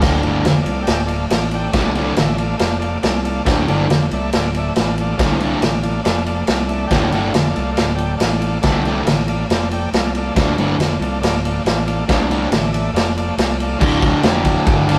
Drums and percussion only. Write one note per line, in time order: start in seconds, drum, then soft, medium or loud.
0.02 kick loud
0.02 snare loud
0.02 crash loud
0.23 ride medium
0.45 snare loud
0.45 ride loud
0.66 ride medium
0.87 snare loud
0.87 ride loud
1.08 ride medium
1.30 snare loud
1.30 ride loud
1.51 ride medium
1.73 kick loud
1.73 snare loud
1.73 ride medium
1.95 ride medium
2.17 snare loud
2.17 ride medium
2.38 ride medium
2.59 snare loud
2.59 ride medium
2.82 ride medium
3.03 snare loud
3.03 ride medium
3.25 ride medium
3.46 kick loud
3.46 snare loud
3.46 ride medium
3.68 ride medium
3.90 snare loud
3.90 ride medium
4.11 ride medium
4.33 snare loud
4.33 ride medium
4.55 ride medium
4.76 snare loud
4.76 ride loud
4.98 ride medium
5.19 kick loud
5.19 snare loud
5.19 ride loud
5.40 ride medium
5.62 snare loud
5.62 ride loud
5.83 ride medium
6.05 snare loud
6.05 ride medium
6.26 ride medium
6.47 snare loud
6.47 ride medium
6.69 ride medium
6.91 kick loud
6.91 snare loud
6.91 ride medium
7.12 ride medium
7.34 snare loud
7.34 ride medium
7.56 ride medium
7.77 snare loud
7.77 ride medium
7.98 ride medium
8.20 snare loud
8.20 ride loud
8.42 ride medium
8.63 kick loud
8.63 snare loud
8.63 ride medium
8.85 ride medium
9.07 snare loud
9.07 ride loud
9.28 ride medium
9.50 snare loud
9.50 ride medium
9.71 ride medium
9.94 snare loud
9.94 ride medium
10.15 ride medium
10.36 kick loud
10.36 snare loud
10.36 ride loud
10.58 ride medium
10.80 snare loud
10.80 ride medium
11.02 ride medium
11.23 snare loud
11.23 ride medium
11.45 ride medium
11.66 snare loud
11.66 ride medium
11.88 ride medium
12.09 kick loud
12.09 snare loud
12.09 ride loud
12.31 ride medium
12.52 snare loud
12.52 ride loud
12.74 ride medium
12.96 snare loud
12.96 ride medium
13.18 ride medium
13.38 snare loud
13.38 ride loud
13.60 ride medium
13.81 kick loud
13.81 crash loud
14.02 kick medium
14.02 ride medium
14.23 snare loud
14.23 ride loud
14.45 kick medium
14.45 ride medium
14.67 kick loud
14.67 ride medium
14.89 ride medium